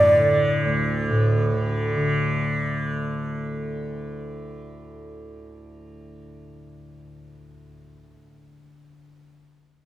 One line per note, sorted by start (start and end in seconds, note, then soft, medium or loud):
0.00 0.65 D2 medium
0.00 1.10 A2 medium
0.00 0.20 D3 medium
0.00 0.70 D5 loud
0.20 1.53 D3 medium
0.65 7.80 D2 medium
1.10 8.25 A2 medium
1.53 1.97 D3 medium
1.97 9.12 D3 medium